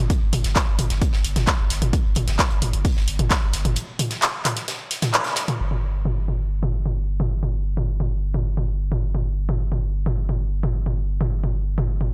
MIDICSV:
0, 0, Header, 1, 3, 480
1, 0, Start_track
1, 0, Tempo, 458015
1, 105, Time_signature, 4, 2, 24, 8
1, 12720, End_track
2, 0, Start_track
2, 0, Title_t, "Sub bass"
2, 0, Program_c, 0, 38
2, 225, Note_on_c, 0, 31, 77
2, 338, Note_off_c, 0, 31, 0
2, 344, Note_on_c, 0, 31, 99
2, 459, Note_off_c, 0, 31, 0
2, 466, Note_on_c, 0, 31, 83
2, 582, Note_off_c, 0, 31, 0
2, 706, Note_on_c, 0, 31, 78
2, 819, Note_off_c, 0, 31, 0
2, 825, Note_on_c, 0, 31, 98
2, 940, Note_off_c, 0, 31, 0
2, 946, Note_on_c, 0, 31, 80
2, 1062, Note_off_c, 0, 31, 0
2, 1185, Note_on_c, 0, 31, 75
2, 1299, Note_off_c, 0, 31, 0
2, 1305, Note_on_c, 0, 31, 98
2, 1420, Note_off_c, 0, 31, 0
2, 1426, Note_on_c, 0, 31, 81
2, 1542, Note_off_c, 0, 31, 0
2, 1666, Note_on_c, 0, 31, 81
2, 1779, Note_off_c, 0, 31, 0
2, 1785, Note_on_c, 0, 31, 103
2, 1900, Note_off_c, 0, 31, 0
2, 1906, Note_on_c, 0, 31, 85
2, 2022, Note_off_c, 0, 31, 0
2, 2145, Note_on_c, 0, 31, 78
2, 2259, Note_off_c, 0, 31, 0
2, 2265, Note_on_c, 0, 31, 99
2, 2379, Note_off_c, 0, 31, 0
2, 2385, Note_on_c, 0, 31, 82
2, 2502, Note_off_c, 0, 31, 0
2, 2625, Note_on_c, 0, 31, 77
2, 2738, Note_off_c, 0, 31, 0
2, 2745, Note_on_c, 0, 31, 93
2, 2859, Note_off_c, 0, 31, 0
2, 2865, Note_on_c, 0, 31, 84
2, 2982, Note_off_c, 0, 31, 0
2, 3105, Note_on_c, 0, 31, 75
2, 3218, Note_off_c, 0, 31, 0
2, 3224, Note_on_c, 0, 31, 97
2, 3339, Note_off_c, 0, 31, 0
2, 3345, Note_on_c, 0, 31, 86
2, 3462, Note_off_c, 0, 31, 0
2, 3585, Note_on_c, 0, 31, 80
2, 3698, Note_off_c, 0, 31, 0
2, 3704, Note_on_c, 0, 31, 103
2, 3819, Note_off_c, 0, 31, 0
2, 3825, Note_on_c, 0, 31, 84
2, 3942, Note_off_c, 0, 31, 0
2, 5864, Note_on_c, 0, 31, 85
2, 12720, Note_off_c, 0, 31, 0
2, 12720, End_track
3, 0, Start_track
3, 0, Title_t, "Drums"
3, 104, Note_on_c, 9, 36, 113
3, 104, Note_on_c, 9, 42, 63
3, 106, Note_off_c, 9, 42, 0
3, 106, Note_on_c, 9, 42, 89
3, 209, Note_off_c, 9, 36, 0
3, 211, Note_off_c, 9, 42, 0
3, 342, Note_on_c, 9, 42, 70
3, 344, Note_on_c, 9, 45, 97
3, 344, Note_on_c, 9, 46, 100
3, 446, Note_off_c, 9, 42, 0
3, 449, Note_off_c, 9, 45, 0
3, 449, Note_off_c, 9, 46, 0
3, 462, Note_on_c, 9, 38, 45
3, 465, Note_on_c, 9, 42, 63
3, 567, Note_off_c, 9, 38, 0
3, 570, Note_off_c, 9, 42, 0
3, 579, Note_on_c, 9, 38, 108
3, 584, Note_on_c, 9, 36, 119
3, 585, Note_on_c, 9, 39, 117
3, 585, Note_on_c, 9, 42, 63
3, 587, Note_off_c, 9, 42, 0
3, 587, Note_on_c, 9, 42, 90
3, 684, Note_off_c, 9, 38, 0
3, 689, Note_off_c, 9, 36, 0
3, 689, Note_off_c, 9, 39, 0
3, 692, Note_off_c, 9, 42, 0
3, 825, Note_on_c, 9, 45, 89
3, 825, Note_on_c, 9, 46, 99
3, 832, Note_on_c, 9, 42, 63
3, 930, Note_off_c, 9, 45, 0
3, 930, Note_off_c, 9, 46, 0
3, 937, Note_off_c, 9, 42, 0
3, 943, Note_on_c, 9, 38, 40
3, 946, Note_on_c, 9, 42, 62
3, 1047, Note_off_c, 9, 38, 0
3, 1051, Note_off_c, 9, 42, 0
3, 1064, Note_on_c, 9, 36, 117
3, 1064, Note_on_c, 9, 42, 85
3, 1065, Note_off_c, 9, 42, 0
3, 1065, Note_on_c, 9, 42, 62
3, 1169, Note_off_c, 9, 36, 0
3, 1170, Note_off_c, 9, 42, 0
3, 1183, Note_on_c, 9, 38, 61
3, 1288, Note_off_c, 9, 38, 0
3, 1305, Note_on_c, 9, 46, 100
3, 1309, Note_on_c, 9, 42, 70
3, 1410, Note_off_c, 9, 46, 0
3, 1414, Note_off_c, 9, 42, 0
3, 1426, Note_on_c, 9, 42, 65
3, 1426, Note_on_c, 9, 45, 98
3, 1427, Note_on_c, 9, 38, 54
3, 1531, Note_off_c, 9, 38, 0
3, 1531, Note_off_c, 9, 42, 0
3, 1531, Note_off_c, 9, 45, 0
3, 1540, Note_on_c, 9, 38, 108
3, 1545, Note_on_c, 9, 36, 114
3, 1545, Note_on_c, 9, 39, 119
3, 1545, Note_on_c, 9, 42, 63
3, 1547, Note_off_c, 9, 42, 0
3, 1547, Note_on_c, 9, 42, 90
3, 1645, Note_off_c, 9, 38, 0
3, 1649, Note_off_c, 9, 36, 0
3, 1650, Note_off_c, 9, 39, 0
3, 1652, Note_off_c, 9, 42, 0
3, 1785, Note_on_c, 9, 46, 104
3, 1787, Note_on_c, 9, 38, 49
3, 1794, Note_on_c, 9, 42, 61
3, 1890, Note_off_c, 9, 46, 0
3, 1891, Note_off_c, 9, 38, 0
3, 1899, Note_off_c, 9, 42, 0
3, 1906, Note_on_c, 9, 42, 66
3, 1906, Note_on_c, 9, 45, 97
3, 2011, Note_off_c, 9, 42, 0
3, 2011, Note_off_c, 9, 45, 0
3, 2025, Note_on_c, 9, 36, 115
3, 2025, Note_on_c, 9, 42, 65
3, 2028, Note_off_c, 9, 42, 0
3, 2028, Note_on_c, 9, 42, 83
3, 2129, Note_off_c, 9, 36, 0
3, 2133, Note_off_c, 9, 42, 0
3, 2254, Note_on_c, 9, 42, 68
3, 2265, Note_on_c, 9, 45, 95
3, 2265, Note_on_c, 9, 46, 104
3, 2358, Note_off_c, 9, 42, 0
3, 2370, Note_off_c, 9, 45, 0
3, 2370, Note_off_c, 9, 46, 0
3, 2384, Note_on_c, 9, 38, 59
3, 2386, Note_on_c, 9, 42, 66
3, 2489, Note_off_c, 9, 38, 0
3, 2490, Note_off_c, 9, 42, 0
3, 2505, Note_on_c, 9, 36, 113
3, 2505, Note_on_c, 9, 39, 127
3, 2505, Note_on_c, 9, 42, 68
3, 2508, Note_off_c, 9, 42, 0
3, 2508, Note_on_c, 9, 42, 79
3, 2512, Note_on_c, 9, 38, 113
3, 2609, Note_off_c, 9, 36, 0
3, 2610, Note_off_c, 9, 39, 0
3, 2612, Note_off_c, 9, 42, 0
3, 2617, Note_off_c, 9, 38, 0
3, 2625, Note_on_c, 9, 42, 46
3, 2729, Note_off_c, 9, 42, 0
3, 2745, Note_on_c, 9, 45, 84
3, 2745, Note_on_c, 9, 46, 102
3, 2746, Note_on_c, 9, 42, 63
3, 2850, Note_off_c, 9, 45, 0
3, 2850, Note_off_c, 9, 46, 0
3, 2851, Note_off_c, 9, 42, 0
3, 2866, Note_on_c, 9, 42, 63
3, 2970, Note_off_c, 9, 42, 0
3, 2984, Note_on_c, 9, 36, 116
3, 2984, Note_on_c, 9, 46, 84
3, 2985, Note_on_c, 9, 42, 64
3, 3089, Note_off_c, 9, 36, 0
3, 3089, Note_off_c, 9, 46, 0
3, 3090, Note_off_c, 9, 42, 0
3, 3108, Note_on_c, 9, 38, 43
3, 3213, Note_off_c, 9, 38, 0
3, 3224, Note_on_c, 9, 42, 74
3, 3225, Note_on_c, 9, 46, 97
3, 3329, Note_off_c, 9, 42, 0
3, 3330, Note_off_c, 9, 46, 0
3, 3346, Note_on_c, 9, 42, 64
3, 3346, Note_on_c, 9, 45, 98
3, 3450, Note_off_c, 9, 42, 0
3, 3450, Note_off_c, 9, 45, 0
3, 3464, Note_on_c, 9, 36, 114
3, 3465, Note_on_c, 9, 39, 124
3, 3465, Note_on_c, 9, 42, 66
3, 3466, Note_off_c, 9, 42, 0
3, 3466, Note_on_c, 9, 42, 90
3, 3475, Note_on_c, 9, 38, 105
3, 3569, Note_off_c, 9, 36, 0
3, 3570, Note_off_c, 9, 39, 0
3, 3571, Note_off_c, 9, 42, 0
3, 3580, Note_off_c, 9, 38, 0
3, 3701, Note_on_c, 9, 42, 72
3, 3704, Note_on_c, 9, 38, 44
3, 3705, Note_on_c, 9, 46, 101
3, 3806, Note_off_c, 9, 42, 0
3, 3809, Note_off_c, 9, 38, 0
3, 3809, Note_off_c, 9, 46, 0
3, 3826, Note_on_c, 9, 42, 65
3, 3826, Note_on_c, 9, 45, 93
3, 3931, Note_off_c, 9, 42, 0
3, 3931, Note_off_c, 9, 45, 0
3, 3940, Note_on_c, 9, 42, 84
3, 3945, Note_off_c, 9, 42, 0
3, 3945, Note_on_c, 9, 42, 69
3, 4049, Note_off_c, 9, 42, 0
3, 4184, Note_on_c, 9, 45, 89
3, 4184, Note_on_c, 9, 46, 106
3, 4188, Note_on_c, 9, 42, 68
3, 4289, Note_off_c, 9, 45, 0
3, 4289, Note_off_c, 9, 46, 0
3, 4293, Note_off_c, 9, 42, 0
3, 4303, Note_on_c, 9, 38, 50
3, 4305, Note_on_c, 9, 42, 65
3, 4407, Note_off_c, 9, 38, 0
3, 4410, Note_off_c, 9, 42, 0
3, 4423, Note_on_c, 9, 38, 115
3, 4425, Note_on_c, 9, 39, 125
3, 4425, Note_on_c, 9, 42, 67
3, 4426, Note_off_c, 9, 42, 0
3, 4426, Note_on_c, 9, 42, 94
3, 4528, Note_off_c, 9, 38, 0
3, 4529, Note_off_c, 9, 39, 0
3, 4531, Note_off_c, 9, 42, 0
3, 4665, Note_on_c, 9, 39, 64
3, 4665, Note_on_c, 9, 45, 82
3, 4665, Note_on_c, 9, 46, 102
3, 4671, Note_on_c, 9, 42, 64
3, 4769, Note_off_c, 9, 39, 0
3, 4769, Note_off_c, 9, 45, 0
3, 4769, Note_off_c, 9, 46, 0
3, 4775, Note_off_c, 9, 42, 0
3, 4779, Note_on_c, 9, 38, 38
3, 4785, Note_on_c, 9, 42, 65
3, 4884, Note_off_c, 9, 38, 0
3, 4890, Note_off_c, 9, 42, 0
3, 4904, Note_on_c, 9, 42, 68
3, 4906, Note_off_c, 9, 42, 0
3, 4906, Note_on_c, 9, 42, 77
3, 4907, Note_on_c, 9, 38, 103
3, 5011, Note_off_c, 9, 42, 0
3, 5012, Note_off_c, 9, 38, 0
3, 5143, Note_on_c, 9, 42, 60
3, 5144, Note_on_c, 9, 46, 100
3, 5146, Note_on_c, 9, 38, 44
3, 5248, Note_off_c, 9, 42, 0
3, 5249, Note_off_c, 9, 46, 0
3, 5250, Note_off_c, 9, 38, 0
3, 5263, Note_on_c, 9, 42, 77
3, 5264, Note_on_c, 9, 38, 103
3, 5265, Note_off_c, 9, 42, 0
3, 5265, Note_on_c, 9, 42, 68
3, 5265, Note_on_c, 9, 45, 97
3, 5369, Note_off_c, 9, 38, 0
3, 5370, Note_off_c, 9, 42, 0
3, 5370, Note_off_c, 9, 45, 0
3, 5385, Note_on_c, 9, 39, 126
3, 5385, Note_on_c, 9, 42, 66
3, 5489, Note_off_c, 9, 39, 0
3, 5489, Note_off_c, 9, 42, 0
3, 5494, Note_on_c, 9, 42, 60
3, 5512, Note_on_c, 9, 38, 44
3, 5599, Note_off_c, 9, 42, 0
3, 5617, Note_off_c, 9, 38, 0
3, 5617, Note_on_c, 9, 38, 107
3, 5620, Note_on_c, 9, 42, 80
3, 5624, Note_on_c, 9, 46, 104
3, 5722, Note_off_c, 9, 38, 0
3, 5725, Note_off_c, 9, 42, 0
3, 5729, Note_off_c, 9, 46, 0
3, 5745, Note_on_c, 9, 45, 93
3, 5745, Note_on_c, 9, 46, 60
3, 5850, Note_off_c, 9, 45, 0
3, 5850, Note_off_c, 9, 46, 0
3, 5985, Note_on_c, 9, 45, 61
3, 6090, Note_off_c, 9, 45, 0
3, 6344, Note_on_c, 9, 45, 86
3, 6449, Note_off_c, 9, 45, 0
3, 6584, Note_on_c, 9, 45, 58
3, 6689, Note_off_c, 9, 45, 0
3, 6945, Note_on_c, 9, 45, 86
3, 7050, Note_off_c, 9, 45, 0
3, 7185, Note_on_c, 9, 45, 61
3, 7290, Note_off_c, 9, 45, 0
3, 7545, Note_on_c, 9, 45, 90
3, 7649, Note_off_c, 9, 45, 0
3, 7785, Note_on_c, 9, 45, 59
3, 7889, Note_off_c, 9, 45, 0
3, 8145, Note_on_c, 9, 45, 83
3, 8250, Note_off_c, 9, 45, 0
3, 8385, Note_on_c, 9, 45, 63
3, 8490, Note_off_c, 9, 45, 0
3, 8744, Note_on_c, 9, 45, 84
3, 8849, Note_off_c, 9, 45, 0
3, 8985, Note_on_c, 9, 45, 60
3, 9089, Note_off_c, 9, 45, 0
3, 9345, Note_on_c, 9, 45, 80
3, 9450, Note_off_c, 9, 45, 0
3, 9585, Note_on_c, 9, 45, 60
3, 9690, Note_off_c, 9, 45, 0
3, 9944, Note_on_c, 9, 45, 88
3, 10049, Note_off_c, 9, 45, 0
3, 10184, Note_on_c, 9, 45, 63
3, 10289, Note_off_c, 9, 45, 0
3, 10545, Note_on_c, 9, 45, 89
3, 10650, Note_off_c, 9, 45, 0
3, 10785, Note_on_c, 9, 45, 65
3, 10890, Note_off_c, 9, 45, 0
3, 11144, Note_on_c, 9, 45, 88
3, 11249, Note_off_c, 9, 45, 0
3, 11384, Note_on_c, 9, 45, 62
3, 11489, Note_off_c, 9, 45, 0
3, 11745, Note_on_c, 9, 45, 97
3, 11850, Note_off_c, 9, 45, 0
3, 11985, Note_on_c, 9, 45, 63
3, 12090, Note_off_c, 9, 45, 0
3, 12344, Note_on_c, 9, 45, 92
3, 12449, Note_off_c, 9, 45, 0
3, 12584, Note_on_c, 9, 45, 64
3, 12689, Note_off_c, 9, 45, 0
3, 12720, End_track
0, 0, End_of_file